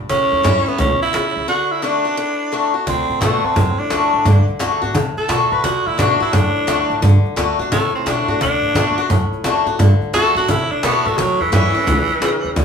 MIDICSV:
0, 0, Header, 1, 6, 480
1, 0, Start_track
1, 0, Key_signature, 2, "major"
1, 0, Tempo, 346420
1, 132, Time_signature, 4, 2, 24, 8
1, 17526, End_track
2, 0, Start_track
2, 0, Title_t, "Tenor saxophone"
2, 0, Program_c, 0, 66
2, 137, Note_on_c, 0, 61, 102
2, 938, Note_on_c, 0, 59, 87
2, 959, Note_off_c, 0, 61, 0
2, 1101, Note_off_c, 0, 59, 0
2, 1113, Note_on_c, 0, 61, 101
2, 1394, Note_off_c, 0, 61, 0
2, 1417, Note_on_c, 0, 64, 98
2, 2017, Note_off_c, 0, 64, 0
2, 2062, Note_on_c, 0, 66, 104
2, 2373, Note_on_c, 0, 64, 94
2, 2394, Note_off_c, 0, 66, 0
2, 2541, Note_on_c, 0, 62, 97
2, 2561, Note_off_c, 0, 64, 0
2, 3810, Note_off_c, 0, 62, 0
2, 3984, Note_on_c, 0, 60, 101
2, 4446, Note_on_c, 0, 57, 96
2, 4467, Note_off_c, 0, 60, 0
2, 4782, Note_on_c, 0, 60, 86
2, 4802, Note_off_c, 0, 57, 0
2, 5248, Note_on_c, 0, 62, 103
2, 5269, Note_off_c, 0, 60, 0
2, 6178, Note_off_c, 0, 62, 0
2, 7171, Note_on_c, 0, 69, 88
2, 7650, Note_on_c, 0, 71, 82
2, 7671, Note_off_c, 0, 69, 0
2, 7822, Note_on_c, 0, 66, 90
2, 7843, Note_off_c, 0, 71, 0
2, 8129, Note_on_c, 0, 64, 95
2, 8149, Note_off_c, 0, 66, 0
2, 8299, Note_on_c, 0, 62, 101
2, 8319, Note_off_c, 0, 64, 0
2, 8597, Note_off_c, 0, 62, 0
2, 8615, Note_on_c, 0, 64, 93
2, 8775, Note_on_c, 0, 62, 113
2, 8796, Note_off_c, 0, 64, 0
2, 9704, Note_off_c, 0, 62, 0
2, 10695, Note_on_c, 0, 57, 114
2, 10994, Note_off_c, 0, 57, 0
2, 11012, Note_on_c, 0, 60, 84
2, 11183, Note_on_c, 0, 62, 94
2, 11204, Note_off_c, 0, 60, 0
2, 11643, Note_off_c, 0, 62, 0
2, 11669, Note_on_c, 0, 62, 109
2, 12591, Note_off_c, 0, 62, 0
2, 14051, Note_on_c, 0, 69, 127
2, 14352, Note_off_c, 0, 69, 0
2, 14374, Note_on_c, 0, 66, 99
2, 14557, Note_on_c, 0, 64, 112
2, 14578, Note_off_c, 0, 66, 0
2, 14844, Note_on_c, 0, 62, 94
2, 14865, Note_off_c, 0, 64, 0
2, 15018, Note_on_c, 0, 59, 96
2, 15039, Note_off_c, 0, 62, 0
2, 15325, Note_on_c, 0, 57, 88
2, 15346, Note_off_c, 0, 59, 0
2, 15487, Note_on_c, 0, 54, 97
2, 15508, Note_off_c, 0, 57, 0
2, 15806, Note_on_c, 0, 52, 89
2, 15827, Note_off_c, 0, 54, 0
2, 15968, Note_off_c, 0, 52, 0
2, 15979, Note_on_c, 0, 52, 117
2, 17372, Note_off_c, 0, 52, 0
2, 17526, End_track
3, 0, Start_track
3, 0, Title_t, "Steel-string acoustic guitar"
3, 0, Program_c, 1, 25
3, 130, Note_on_c, 1, 45, 88
3, 601, Note_on_c, 1, 52, 86
3, 614, Note_on_c, 1, 55, 91
3, 621, Note_on_c, 1, 61, 90
3, 630, Note_on_c, 1, 64, 104
3, 899, Note_off_c, 1, 64, 0
3, 906, Note_off_c, 1, 52, 0
3, 912, Note_off_c, 1, 55, 0
3, 915, Note_on_c, 1, 64, 62
3, 916, Note_off_c, 1, 61, 0
3, 946, Note_on_c, 1, 61, 52
3, 1060, Note_off_c, 1, 45, 0
3, 1083, Note_off_c, 1, 64, 0
3, 1085, Note_on_c, 1, 47, 86
3, 1099, Note_off_c, 1, 61, 0
3, 1554, Note_off_c, 1, 47, 0
3, 1564, Note_on_c, 1, 49, 83
3, 2034, Note_off_c, 1, 49, 0
3, 2051, Note_on_c, 1, 50, 93
3, 2508, Note_off_c, 1, 50, 0
3, 2524, Note_on_c, 1, 50, 91
3, 2536, Note_on_c, 1, 57, 85
3, 2546, Note_on_c, 1, 62, 92
3, 2552, Note_on_c, 1, 66, 95
3, 2823, Note_off_c, 1, 66, 0
3, 2829, Note_off_c, 1, 50, 0
3, 2835, Note_off_c, 1, 57, 0
3, 2840, Note_off_c, 1, 62, 0
3, 2840, Note_on_c, 1, 66, 66
3, 2868, Note_on_c, 1, 62, 53
3, 3007, Note_off_c, 1, 66, 0
3, 3011, Note_on_c, 1, 45, 90
3, 3021, Note_off_c, 1, 62, 0
3, 3488, Note_on_c, 1, 50, 78
3, 3499, Note_on_c, 1, 57, 78
3, 3509, Note_on_c, 1, 62, 88
3, 3517, Note_on_c, 1, 66, 78
3, 3778, Note_off_c, 1, 66, 0
3, 3791, Note_off_c, 1, 50, 0
3, 3795, Note_on_c, 1, 66, 54
3, 3797, Note_off_c, 1, 57, 0
3, 3802, Note_off_c, 1, 62, 0
3, 3828, Note_on_c, 1, 62, 45
3, 3941, Note_off_c, 1, 45, 0
3, 3965, Note_off_c, 1, 66, 0
3, 3976, Note_on_c, 1, 50, 92
3, 3981, Note_off_c, 1, 62, 0
3, 4427, Note_off_c, 1, 50, 0
3, 4444, Note_on_c, 1, 50, 88
3, 4454, Note_on_c, 1, 57, 82
3, 4465, Note_on_c, 1, 62, 83
3, 4476, Note_on_c, 1, 66, 94
3, 4914, Note_off_c, 1, 50, 0
3, 4919, Note_off_c, 1, 57, 0
3, 4925, Note_off_c, 1, 62, 0
3, 4930, Note_off_c, 1, 66, 0
3, 4935, Note_on_c, 1, 45, 85
3, 5407, Note_on_c, 1, 50, 78
3, 5416, Note_on_c, 1, 57, 92
3, 5427, Note_on_c, 1, 62, 87
3, 5436, Note_on_c, 1, 66, 89
3, 5862, Note_off_c, 1, 45, 0
3, 5875, Note_off_c, 1, 50, 0
3, 5880, Note_off_c, 1, 57, 0
3, 5885, Note_off_c, 1, 62, 0
3, 5889, Note_off_c, 1, 66, 0
3, 5897, Note_on_c, 1, 50, 91
3, 6348, Note_off_c, 1, 50, 0
3, 6365, Note_on_c, 1, 50, 92
3, 6379, Note_on_c, 1, 57, 90
3, 6386, Note_on_c, 1, 62, 84
3, 6396, Note_on_c, 1, 66, 97
3, 6656, Note_off_c, 1, 66, 0
3, 6668, Note_off_c, 1, 50, 0
3, 6673, Note_on_c, 1, 66, 72
3, 6675, Note_off_c, 1, 57, 0
3, 6679, Note_off_c, 1, 62, 0
3, 6700, Note_on_c, 1, 62, 58
3, 6842, Note_off_c, 1, 66, 0
3, 6856, Note_off_c, 1, 62, 0
3, 6858, Note_on_c, 1, 45, 90
3, 7323, Note_on_c, 1, 50, 82
3, 7331, Note_on_c, 1, 57, 86
3, 7343, Note_on_c, 1, 62, 82
3, 7352, Note_on_c, 1, 66, 93
3, 7782, Note_off_c, 1, 45, 0
3, 7792, Note_off_c, 1, 50, 0
3, 7796, Note_off_c, 1, 57, 0
3, 7802, Note_off_c, 1, 62, 0
3, 7806, Note_off_c, 1, 66, 0
3, 7812, Note_on_c, 1, 50, 92
3, 8264, Note_off_c, 1, 50, 0
3, 8281, Note_on_c, 1, 50, 82
3, 8295, Note_on_c, 1, 57, 87
3, 8304, Note_on_c, 1, 62, 88
3, 8312, Note_on_c, 1, 66, 113
3, 8578, Note_off_c, 1, 66, 0
3, 8585, Note_off_c, 1, 50, 0
3, 8592, Note_off_c, 1, 57, 0
3, 8594, Note_on_c, 1, 66, 63
3, 8597, Note_off_c, 1, 62, 0
3, 8624, Note_on_c, 1, 62, 58
3, 8762, Note_off_c, 1, 66, 0
3, 8771, Note_on_c, 1, 45, 99
3, 8777, Note_off_c, 1, 62, 0
3, 9244, Note_on_c, 1, 50, 92
3, 9256, Note_on_c, 1, 57, 98
3, 9266, Note_on_c, 1, 62, 97
3, 9271, Note_on_c, 1, 66, 95
3, 9698, Note_off_c, 1, 45, 0
3, 9711, Note_off_c, 1, 50, 0
3, 9717, Note_off_c, 1, 57, 0
3, 9722, Note_off_c, 1, 62, 0
3, 9725, Note_off_c, 1, 66, 0
3, 9730, Note_on_c, 1, 50, 99
3, 10186, Note_off_c, 1, 50, 0
3, 10203, Note_on_c, 1, 50, 90
3, 10215, Note_on_c, 1, 57, 98
3, 10224, Note_on_c, 1, 62, 98
3, 10235, Note_on_c, 1, 66, 98
3, 10504, Note_off_c, 1, 66, 0
3, 10505, Note_off_c, 1, 50, 0
3, 10512, Note_off_c, 1, 57, 0
3, 10516, Note_off_c, 1, 62, 0
3, 10521, Note_on_c, 1, 66, 68
3, 10550, Note_on_c, 1, 62, 60
3, 10684, Note_off_c, 1, 66, 0
3, 10694, Note_on_c, 1, 45, 95
3, 10699, Note_off_c, 1, 62, 0
3, 11167, Note_on_c, 1, 50, 82
3, 11180, Note_on_c, 1, 57, 91
3, 11190, Note_on_c, 1, 62, 89
3, 11198, Note_on_c, 1, 66, 92
3, 11460, Note_off_c, 1, 66, 0
3, 11467, Note_off_c, 1, 50, 0
3, 11474, Note_off_c, 1, 57, 0
3, 11476, Note_on_c, 1, 66, 65
3, 11479, Note_off_c, 1, 62, 0
3, 11504, Note_on_c, 1, 62, 50
3, 11618, Note_off_c, 1, 45, 0
3, 11642, Note_off_c, 1, 66, 0
3, 11653, Note_on_c, 1, 50, 92
3, 11656, Note_off_c, 1, 62, 0
3, 12108, Note_off_c, 1, 50, 0
3, 12125, Note_on_c, 1, 50, 84
3, 12139, Note_on_c, 1, 57, 80
3, 12148, Note_on_c, 1, 62, 91
3, 12156, Note_on_c, 1, 66, 83
3, 12422, Note_off_c, 1, 66, 0
3, 12426, Note_off_c, 1, 50, 0
3, 12433, Note_off_c, 1, 57, 0
3, 12437, Note_off_c, 1, 62, 0
3, 12439, Note_on_c, 1, 66, 71
3, 12468, Note_on_c, 1, 62, 58
3, 12603, Note_off_c, 1, 66, 0
3, 12607, Note_on_c, 1, 45, 89
3, 12617, Note_off_c, 1, 62, 0
3, 13083, Note_on_c, 1, 50, 94
3, 13093, Note_on_c, 1, 57, 85
3, 13104, Note_on_c, 1, 62, 96
3, 13114, Note_on_c, 1, 66, 96
3, 13376, Note_off_c, 1, 66, 0
3, 13385, Note_off_c, 1, 50, 0
3, 13390, Note_off_c, 1, 57, 0
3, 13392, Note_on_c, 1, 66, 60
3, 13396, Note_off_c, 1, 62, 0
3, 13423, Note_on_c, 1, 62, 44
3, 13535, Note_off_c, 1, 45, 0
3, 13559, Note_off_c, 1, 66, 0
3, 13573, Note_on_c, 1, 50, 98
3, 13575, Note_off_c, 1, 62, 0
3, 14024, Note_off_c, 1, 50, 0
3, 14041, Note_on_c, 1, 50, 92
3, 14055, Note_on_c, 1, 57, 87
3, 14063, Note_on_c, 1, 62, 86
3, 14073, Note_on_c, 1, 66, 97
3, 14344, Note_off_c, 1, 50, 0
3, 14344, Note_off_c, 1, 66, 0
3, 14351, Note_off_c, 1, 57, 0
3, 14355, Note_off_c, 1, 62, 0
3, 14361, Note_on_c, 1, 66, 74
3, 14388, Note_on_c, 1, 62, 55
3, 14524, Note_off_c, 1, 66, 0
3, 14533, Note_on_c, 1, 45, 91
3, 14537, Note_off_c, 1, 62, 0
3, 15008, Note_on_c, 1, 50, 92
3, 15021, Note_on_c, 1, 57, 98
3, 15028, Note_on_c, 1, 62, 98
3, 15037, Note_on_c, 1, 66, 99
3, 15301, Note_off_c, 1, 66, 0
3, 15307, Note_off_c, 1, 50, 0
3, 15314, Note_off_c, 1, 57, 0
3, 15317, Note_off_c, 1, 62, 0
3, 15318, Note_on_c, 1, 66, 60
3, 15348, Note_on_c, 1, 62, 48
3, 15457, Note_off_c, 1, 45, 0
3, 15482, Note_off_c, 1, 66, 0
3, 15497, Note_off_c, 1, 62, 0
3, 15500, Note_on_c, 1, 45, 100
3, 15962, Note_on_c, 1, 52, 88
3, 15974, Note_on_c, 1, 55, 90
3, 15982, Note_on_c, 1, 61, 97
3, 15991, Note_on_c, 1, 64, 103
3, 16257, Note_off_c, 1, 64, 0
3, 16264, Note_off_c, 1, 52, 0
3, 16270, Note_off_c, 1, 55, 0
3, 16274, Note_off_c, 1, 61, 0
3, 16274, Note_on_c, 1, 64, 72
3, 16301, Note_on_c, 1, 61, 57
3, 16421, Note_off_c, 1, 45, 0
3, 16440, Note_off_c, 1, 64, 0
3, 16454, Note_off_c, 1, 61, 0
3, 16454, Note_on_c, 1, 47, 84
3, 16915, Note_off_c, 1, 47, 0
3, 16931, Note_on_c, 1, 49, 93
3, 17394, Note_off_c, 1, 49, 0
3, 17407, Note_on_c, 1, 50, 93
3, 17526, Note_off_c, 1, 50, 0
3, 17526, End_track
4, 0, Start_track
4, 0, Title_t, "Upright bass"
4, 0, Program_c, 2, 32
4, 131, Note_on_c, 2, 33, 94
4, 348, Note_off_c, 2, 33, 0
4, 448, Note_on_c, 2, 40, 88
4, 565, Note_off_c, 2, 40, 0
4, 620, Note_on_c, 2, 42, 91
4, 835, Note_off_c, 2, 42, 0
4, 1092, Note_on_c, 2, 37, 83
4, 1310, Note_off_c, 2, 37, 0
4, 1582, Note_on_c, 2, 33, 75
4, 1797, Note_off_c, 2, 33, 0
4, 1890, Note_on_c, 2, 37, 81
4, 2007, Note_off_c, 2, 37, 0
4, 3975, Note_on_c, 2, 38, 95
4, 4193, Note_off_c, 2, 38, 0
4, 4286, Note_on_c, 2, 45, 86
4, 4405, Note_off_c, 2, 45, 0
4, 4454, Note_on_c, 2, 47, 88
4, 4672, Note_off_c, 2, 47, 0
4, 4932, Note_on_c, 2, 42, 89
4, 5151, Note_off_c, 2, 42, 0
4, 5415, Note_on_c, 2, 38, 88
4, 5633, Note_off_c, 2, 38, 0
4, 5727, Note_on_c, 2, 45, 84
4, 5846, Note_off_c, 2, 45, 0
4, 5892, Note_on_c, 2, 43, 97
4, 6110, Note_off_c, 2, 43, 0
4, 6380, Note_on_c, 2, 38, 90
4, 6595, Note_off_c, 2, 38, 0
4, 6689, Note_on_c, 2, 45, 90
4, 6806, Note_off_c, 2, 45, 0
4, 6850, Note_on_c, 2, 48, 87
4, 7068, Note_off_c, 2, 48, 0
4, 7329, Note_on_c, 2, 47, 86
4, 7548, Note_off_c, 2, 47, 0
4, 7645, Note_on_c, 2, 45, 91
4, 7763, Note_off_c, 2, 45, 0
4, 7813, Note_on_c, 2, 38, 91
4, 8030, Note_off_c, 2, 38, 0
4, 8126, Note_on_c, 2, 45, 92
4, 8244, Note_off_c, 2, 45, 0
4, 8297, Note_on_c, 2, 47, 97
4, 8512, Note_off_c, 2, 47, 0
4, 8774, Note_on_c, 2, 42, 94
4, 8990, Note_off_c, 2, 42, 0
4, 9247, Note_on_c, 2, 38, 86
4, 9465, Note_off_c, 2, 38, 0
4, 9558, Note_on_c, 2, 45, 92
4, 9678, Note_off_c, 2, 45, 0
4, 9732, Note_on_c, 2, 43, 92
4, 9949, Note_off_c, 2, 43, 0
4, 10209, Note_on_c, 2, 38, 90
4, 10426, Note_off_c, 2, 38, 0
4, 10516, Note_on_c, 2, 45, 86
4, 10636, Note_off_c, 2, 45, 0
4, 10694, Note_on_c, 2, 48, 88
4, 10910, Note_off_c, 2, 48, 0
4, 11173, Note_on_c, 2, 47, 82
4, 11389, Note_off_c, 2, 47, 0
4, 11472, Note_on_c, 2, 45, 86
4, 11593, Note_off_c, 2, 45, 0
4, 11655, Note_on_c, 2, 38, 94
4, 11871, Note_off_c, 2, 38, 0
4, 11943, Note_on_c, 2, 45, 94
4, 12068, Note_off_c, 2, 45, 0
4, 12120, Note_on_c, 2, 47, 95
4, 12340, Note_off_c, 2, 47, 0
4, 12609, Note_on_c, 2, 42, 88
4, 12826, Note_off_c, 2, 42, 0
4, 13075, Note_on_c, 2, 38, 89
4, 13297, Note_off_c, 2, 38, 0
4, 13387, Note_on_c, 2, 45, 100
4, 13510, Note_off_c, 2, 45, 0
4, 13567, Note_on_c, 2, 43, 96
4, 13785, Note_off_c, 2, 43, 0
4, 14035, Note_on_c, 2, 38, 92
4, 14257, Note_off_c, 2, 38, 0
4, 14344, Note_on_c, 2, 45, 86
4, 14468, Note_off_c, 2, 45, 0
4, 14527, Note_on_c, 2, 48, 90
4, 14744, Note_off_c, 2, 48, 0
4, 15008, Note_on_c, 2, 47, 89
4, 15225, Note_off_c, 2, 47, 0
4, 15323, Note_on_c, 2, 45, 96
4, 15440, Note_off_c, 2, 45, 0
4, 15493, Note_on_c, 2, 33, 96
4, 15709, Note_off_c, 2, 33, 0
4, 15803, Note_on_c, 2, 40, 92
4, 15921, Note_off_c, 2, 40, 0
4, 15967, Note_on_c, 2, 42, 90
4, 16185, Note_off_c, 2, 42, 0
4, 16450, Note_on_c, 2, 37, 87
4, 16667, Note_off_c, 2, 37, 0
4, 16918, Note_on_c, 2, 33, 87
4, 17139, Note_off_c, 2, 33, 0
4, 17242, Note_on_c, 2, 40, 94
4, 17360, Note_off_c, 2, 40, 0
4, 17406, Note_on_c, 2, 38, 90
4, 17526, Note_off_c, 2, 38, 0
4, 17526, End_track
5, 0, Start_track
5, 0, Title_t, "Cajon"
5, 132, Note_on_c, 9, 36, 105
5, 271, Note_off_c, 9, 36, 0
5, 446, Note_on_c, 9, 38, 34
5, 585, Note_off_c, 9, 38, 0
5, 616, Note_on_c, 9, 38, 105
5, 755, Note_off_c, 9, 38, 0
5, 930, Note_on_c, 9, 38, 32
5, 1068, Note_off_c, 9, 38, 0
5, 1093, Note_on_c, 9, 38, 34
5, 1094, Note_on_c, 9, 36, 113
5, 1232, Note_off_c, 9, 38, 0
5, 1233, Note_off_c, 9, 36, 0
5, 1407, Note_on_c, 9, 38, 36
5, 1545, Note_off_c, 9, 38, 0
5, 1579, Note_on_c, 9, 38, 105
5, 1718, Note_off_c, 9, 38, 0
5, 1886, Note_on_c, 9, 38, 39
5, 2025, Note_off_c, 9, 38, 0
5, 3977, Note_on_c, 9, 36, 113
5, 4116, Note_off_c, 9, 36, 0
5, 4292, Note_on_c, 9, 38, 35
5, 4430, Note_off_c, 9, 38, 0
5, 4457, Note_on_c, 9, 38, 116
5, 4596, Note_off_c, 9, 38, 0
5, 4769, Note_on_c, 9, 38, 37
5, 4908, Note_off_c, 9, 38, 0
5, 4935, Note_on_c, 9, 36, 116
5, 5073, Note_off_c, 9, 36, 0
5, 5240, Note_on_c, 9, 38, 41
5, 5378, Note_off_c, 9, 38, 0
5, 5410, Note_on_c, 9, 38, 98
5, 5548, Note_off_c, 9, 38, 0
5, 5725, Note_on_c, 9, 38, 38
5, 5864, Note_off_c, 9, 38, 0
5, 5895, Note_on_c, 9, 36, 106
5, 6033, Note_off_c, 9, 36, 0
5, 6207, Note_on_c, 9, 38, 36
5, 6345, Note_off_c, 9, 38, 0
5, 6374, Note_on_c, 9, 38, 108
5, 6513, Note_off_c, 9, 38, 0
5, 6689, Note_on_c, 9, 38, 34
5, 6828, Note_off_c, 9, 38, 0
5, 6853, Note_on_c, 9, 36, 114
5, 6992, Note_off_c, 9, 36, 0
5, 7167, Note_on_c, 9, 38, 35
5, 7305, Note_off_c, 9, 38, 0
5, 7330, Note_on_c, 9, 38, 109
5, 7333, Note_on_c, 9, 36, 78
5, 7469, Note_off_c, 9, 38, 0
5, 7472, Note_off_c, 9, 36, 0
5, 7644, Note_on_c, 9, 38, 35
5, 7782, Note_off_c, 9, 38, 0
5, 7814, Note_on_c, 9, 36, 107
5, 7952, Note_off_c, 9, 36, 0
5, 8128, Note_on_c, 9, 38, 37
5, 8267, Note_off_c, 9, 38, 0
5, 8297, Note_on_c, 9, 38, 113
5, 8435, Note_off_c, 9, 38, 0
5, 8609, Note_on_c, 9, 38, 37
5, 8748, Note_off_c, 9, 38, 0
5, 8774, Note_on_c, 9, 36, 118
5, 8913, Note_off_c, 9, 36, 0
5, 9088, Note_on_c, 9, 38, 38
5, 9227, Note_off_c, 9, 38, 0
5, 9254, Note_on_c, 9, 38, 111
5, 9393, Note_off_c, 9, 38, 0
5, 9567, Note_on_c, 9, 38, 40
5, 9705, Note_off_c, 9, 38, 0
5, 9736, Note_on_c, 9, 36, 117
5, 9874, Note_off_c, 9, 36, 0
5, 10047, Note_on_c, 9, 38, 38
5, 10186, Note_off_c, 9, 38, 0
5, 10213, Note_on_c, 9, 38, 119
5, 10352, Note_off_c, 9, 38, 0
5, 10526, Note_on_c, 9, 38, 34
5, 10665, Note_off_c, 9, 38, 0
5, 10694, Note_on_c, 9, 36, 116
5, 10833, Note_off_c, 9, 36, 0
5, 11010, Note_on_c, 9, 38, 36
5, 11149, Note_off_c, 9, 38, 0
5, 11174, Note_on_c, 9, 36, 72
5, 11177, Note_on_c, 9, 38, 119
5, 11312, Note_off_c, 9, 36, 0
5, 11315, Note_off_c, 9, 38, 0
5, 11490, Note_on_c, 9, 38, 38
5, 11628, Note_off_c, 9, 38, 0
5, 11653, Note_on_c, 9, 36, 119
5, 11791, Note_off_c, 9, 36, 0
5, 11967, Note_on_c, 9, 38, 35
5, 12105, Note_off_c, 9, 38, 0
5, 12132, Note_on_c, 9, 38, 107
5, 12270, Note_off_c, 9, 38, 0
5, 12443, Note_on_c, 9, 38, 35
5, 12582, Note_off_c, 9, 38, 0
5, 12607, Note_on_c, 9, 38, 36
5, 12609, Note_on_c, 9, 36, 113
5, 12745, Note_off_c, 9, 38, 0
5, 12747, Note_off_c, 9, 36, 0
5, 12924, Note_on_c, 9, 38, 36
5, 13062, Note_off_c, 9, 38, 0
5, 13084, Note_on_c, 9, 38, 105
5, 13222, Note_off_c, 9, 38, 0
5, 13399, Note_on_c, 9, 38, 39
5, 13538, Note_off_c, 9, 38, 0
5, 13568, Note_on_c, 9, 36, 109
5, 13707, Note_off_c, 9, 36, 0
5, 13881, Note_on_c, 9, 38, 40
5, 14020, Note_off_c, 9, 38, 0
5, 14047, Note_on_c, 9, 38, 122
5, 14186, Note_off_c, 9, 38, 0
5, 14359, Note_on_c, 9, 38, 36
5, 14497, Note_off_c, 9, 38, 0
5, 14527, Note_on_c, 9, 38, 36
5, 14528, Note_on_c, 9, 36, 115
5, 14666, Note_off_c, 9, 38, 0
5, 14667, Note_off_c, 9, 36, 0
5, 14838, Note_on_c, 9, 38, 37
5, 14976, Note_off_c, 9, 38, 0
5, 15008, Note_on_c, 9, 38, 111
5, 15010, Note_on_c, 9, 36, 72
5, 15147, Note_off_c, 9, 38, 0
5, 15148, Note_off_c, 9, 36, 0
5, 15323, Note_on_c, 9, 38, 37
5, 15462, Note_off_c, 9, 38, 0
5, 15491, Note_on_c, 9, 36, 119
5, 15629, Note_off_c, 9, 36, 0
5, 15800, Note_on_c, 9, 38, 36
5, 15938, Note_off_c, 9, 38, 0
5, 15971, Note_on_c, 9, 38, 116
5, 16110, Note_off_c, 9, 38, 0
5, 16280, Note_on_c, 9, 38, 33
5, 16419, Note_off_c, 9, 38, 0
5, 16450, Note_on_c, 9, 36, 116
5, 16588, Note_off_c, 9, 36, 0
5, 16764, Note_on_c, 9, 38, 39
5, 16903, Note_off_c, 9, 38, 0
5, 16929, Note_on_c, 9, 38, 108
5, 17067, Note_off_c, 9, 38, 0
5, 17242, Note_on_c, 9, 38, 39
5, 17380, Note_off_c, 9, 38, 0
5, 17408, Note_on_c, 9, 36, 121
5, 17526, Note_off_c, 9, 36, 0
5, 17526, End_track
6, 0, Start_track
6, 0, Title_t, "Muted upright bass strokes"
6, 929, Note_on_c, 9, 29, 70
6, 1068, Note_off_c, 9, 29, 0
6, 1407, Note_on_c, 9, 29, 66
6, 1546, Note_off_c, 9, 29, 0
6, 4768, Note_on_c, 9, 29, 66
6, 4907, Note_off_c, 9, 29, 0
6, 5248, Note_on_c, 9, 29, 74
6, 5386, Note_off_c, 9, 29, 0
6, 6214, Note_on_c, 9, 29, 76
6, 6353, Note_off_c, 9, 29, 0
6, 7167, Note_on_c, 9, 29, 65
6, 7305, Note_off_c, 9, 29, 0
6, 8598, Note_on_c, 9, 29, 69
6, 8737, Note_off_c, 9, 29, 0
6, 9083, Note_on_c, 9, 29, 78
6, 9222, Note_off_c, 9, 29, 0
6, 10029, Note_on_c, 9, 29, 75
6, 10168, Note_off_c, 9, 29, 0
6, 10992, Note_on_c, 9, 29, 64
6, 11130, Note_off_c, 9, 29, 0
6, 12434, Note_on_c, 9, 29, 69
6, 12573, Note_off_c, 9, 29, 0
6, 12914, Note_on_c, 9, 29, 75
6, 13053, Note_off_c, 9, 29, 0
6, 13871, Note_on_c, 9, 29, 78
6, 14010, Note_off_c, 9, 29, 0
6, 14838, Note_on_c, 9, 29, 71
6, 14977, Note_off_c, 9, 29, 0
6, 16283, Note_on_c, 9, 29, 73
6, 16422, Note_off_c, 9, 29, 0
6, 16751, Note_on_c, 9, 29, 74
6, 16889, Note_off_c, 9, 29, 0
6, 17526, End_track
0, 0, End_of_file